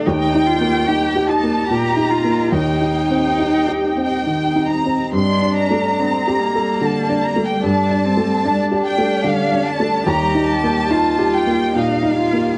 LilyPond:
<<
  \new Staff \with { instrumentName = "Violin section" } { \time 3/4 \key g \minor \tempo 4 = 72 g''4. a''8 bes''4 | g''2~ g''8 bes''8 | c'''8 bes''4. a''8 bes''16 g''16 | a''4. g''8 f''8 a''8 |
bes''8 a''4 g''8 f''4 | }
  \new Staff \with { instrumentName = "Ambient pad" } { \time 3/4 \key g \minor << { <g' ees''>2.~ | <g' ees''>2. | <g' d''>2.~ | <g' d''>2. |
<g' ees''>2. | } \\ { bes2. | c'2. | g2.~ | g2. |
bes2. | } >> }
  \new Staff \with { instrumentName = "Cello" } { \time 3/4 \key g \minor ees'8 f'8 g'8 ees'8 g'8 f'8 | ees'2~ ees'8 r8 | d'4 c'8 bes4. | d'8 c'8 d'2 |
g'4 f'4 ees'8 f'8 | }
  \new Staff \with { instrumentName = "Upright piano" } { \time 3/4 \key g \minor \tuplet 3/2 { ees,8 ees'8 bes8 ees'8 g'8 bes8 bes,8 ees'8 bes8 } | \tuplet 3/2 { ees,8 ees'8 c'8 ees'8 g'8 c'8 ees8 ees'8 c'8 } | \tuplet 3/2 { g,8 d'8 a8 d'8 g'8 a'8 d8 d'8 a8 } | \tuplet 3/2 { g,8 d'8 a8 d'8 g'8 a8 d8 d'8 a8 } |
\tuplet 3/2 { ees,8 ees'8 bes8 ees'8 g'8 bes8 bes,8 ees'8 bes8 } | }
>>